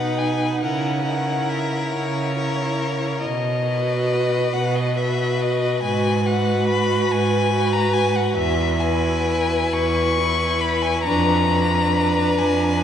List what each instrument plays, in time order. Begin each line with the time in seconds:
Already playing: cello B2, viola D#4, violin B4 F#5
0.19 violin G#5
0.62 cello C#3, viola E4, violin A#4 F#5
1.07 viola E4, violin A#4
1.50 violin E5
1.94 cello C#3, violin C#5
2.38 viola E4, violin A#4
3.23 cello B2, violin D#5
3.67 viola F#4, violin B4
4.53 cello B2, violin F#5
4.76 violin D#5
4.97 viola F#4, violin B4 E5
5.41 violin D#5
5.83 cello G#2, viola F#4, violin B4 G#5
6.26 viola F#4, violin B4 F#5
6.69 violin B5
7.12 cello G#2, violin G#5
7.53 viola F#4, violin B4
7.73 violin A#5
7.94 violin G#5
8.15 violin F#5
8.36 cello E2, violin E5
8.80 viola E4, violin B4 G#5
9.73 cello E2, violin C#6
10.19 viola E4, violin B4
10.61 violin B5
10.82 violin G#5
11.04 cello F2, viola D4, violin B4 A#5
11.51 viola D4, violin B4
12.39 cello F2, violin G#5